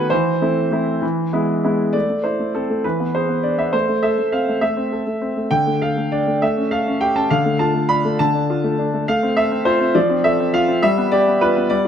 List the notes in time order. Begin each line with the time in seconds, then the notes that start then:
Already playing: D#3 A3 B3 F#4 B4 F#5 G#5
0.10 E3 C5
0.41 A3 C4 E4
0.71 A3 C4 E4
1.02 E3
1.33 G#3 B3 E4
1.64 G#3 B3 E4
1.93 A3 D5
2.09 A3
2.24 E4 C5
2.40 A3
2.55 C4 A4
2.70 A3
2.84 E3 B4
3.00 B3
3.15 G#4 C5
3.29 B3
3.43 D4 D5
3.58 B3 E5
3.73 A3 C5
3.89 A3
4.03 A4 E5
4.18 A3
4.32 C4 F5
4.49 A3
4.61 A3 E5
4.77 C4
4.92 A4
5.07 A3
5.21 C4
5.37 A3
5.51 D3 G5
5.67 A3
5.82 A4 F5
5.97 A3
6.12 D4 D5
6.27 A3
6.42 A3 E5
6.57 C#4
6.71 A4 F5
6.88 C#4
7.01 G4 G5
7.16 C#4 A5
7.30 D3 F5
7.46 A3
7.59 F4 A5
7.74 A3
7.89 D4 B5
8.05 A3
8.19 D3 A5
8.35 D4
8.50 F4
8.64 A3
8.78 D4
8.94 A3
9.08 A3 F5
9.23 C4
9.37 A4 E5
9.51 C4
9.65 F4 C5
9.80 C4
9.95 F3 D5
10.10 C4
10.24 A4 E5
10.40 C4
10.54 F4 F5
10.68 C4
10.83 G3 E5
10.98 B3
11.12 G4 D5
11.28 B3
11.41 F4 B4
11.57 B3
11.70 G3 D5